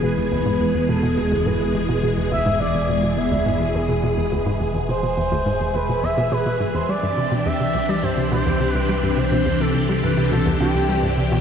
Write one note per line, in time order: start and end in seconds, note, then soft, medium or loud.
0.00 6.86 E1 medium
0.00 6.85 B2 medium
0.00 0.13 B2 medium
0.00 11.41 E3 medium
0.00 6.85 G#3 medium
0.00 6.85 G#4 medium
0.00 0.30 B4 loud
0.17 0.31 E2 medium
0.31 0.42 D2 loud
0.31 0.85 B4 loud
0.46 0.56 G#2 medium
0.60 0.66 E2 medium
0.75 0.81 E2 medium
0.89 0.99 B2 medium
0.89 1.19 A4 medium
1.03 1.13 B2 medium
1.17 1.31 E2 medium
1.17 1.47 G#4 medium
1.32 1.42 D2 medium
1.46 1.56 G#2 loud
1.46 2.03 B4 medium
1.60 1.66 E2 medium
1.75 1.81 E2 medium
1.89 1.99 B2 medium
2.03 2.13 B2 medium
2.17 2.31 E2 medium
2.32 2.42 D2 loud
2.32 2.58 E5 loud
2.46 2.56 G#2 loud
2.60 2.66 E2 medium
2.60 3.19 D5 loud
2.75 2.81 E2 medium
2.89 2.99 B2 medium
3.03 3.13 B2 medium
3.17 3.31 E2 medium
3.17 3.76 E5 loud
3.32 3.42 D2 loud
3.46 3.56 G#2 loud
3.60 3.66 E2 medium
3.75 3.81 E2 medium
3.75 4.32 G#4 medium
3.89 3.99 B2 medium
4.03 4.13 B2 medium
4.18 4.31 E2 medium
4.32 4.42 D2 medium
4.46 4.56 G#2 loud
4.60 4.66 E2 medium
4.75 4.81 E2 medium
4.89 4.99 B2 medium
4.89 5.76 C5 loud
5.03 5.13 B2 medium
5.18 5.31 E2 medium
5.32 5.42 D2 loud
5.46 5.56 G#2 loud
5.60 5.66 E2 medium
5.75 5.81 E2 medium
5.75 6.05 B4 loud
5.89 5.99 B2 medium
6.03 6.13 E2 medium
6.03 6.33 E5 loud
6.18 6.28 B2 loud
6.32 6.42 B2 medium
6.32 6.76 B4 loud
6.46 6.56 B2 medium
6.60 6.66 G#2 medium
6.75 6.85 E2 medium
6.75 6.91 C5 medium
6.89 11.41 C2 medium
6.89 6.99 G3 medium
6.89 11.41 C4 medium
6.89 11.41 D4 medium
6.89 11.41 G4 medium
6.89 7.48 D5 loud
7.03 7.13 G2 medium
7.17 7.31 C3 medium
7.32 7.42 B2 medium
7.46 7.56 E2 loud
7.46 7.91 E5 loud
7.60 7.70 C3 medium
7.75 7.81 C2 medium
7.89 7.99 G3 medium
7.89 8.05 D5 loud
8.03 8.13 G2 medium
8.03 8.31 C5 medium
8.17 8.31 C3 medium
8.32 8.42 B2 medium
8.32 8.70 C5 loud
8.46 8.56 E2 loud
8.60 8.70 C3 medium
8.70 8.89 B4 loud
8.75 8.81 C2 medium
8.89 8.99 G3 medium
8.89 9.19 B4 medium
9.03 9.13 G2 medium
9.17 9.31 C3 medium
9.17 9.62 C5 loud
9.32 9.42 B2 medium
9.46 9.56 E2 medium
9.60 9.71 C3 medium
9.60 10.05 A4 loud
9.75 9.81 C2 medium
9.89 9.99 G3 medium
10.03 10.13 G2 medium
10.03 10.31 B4 medium
10.17 10.31 C3 medium
10.32 10.42 B2 loud
10.32 10.58 A4 medium
10.46 10.56 E2 loud
10.60 10.70 C3 medium
10.60 11.14 G4 medium
10.75 10.81 C2 medium
10.89 10.99 G3 medium
11.03 11.13 G2 medium
11.17 11.31 C3 medium
11.32 11.41 B2 loud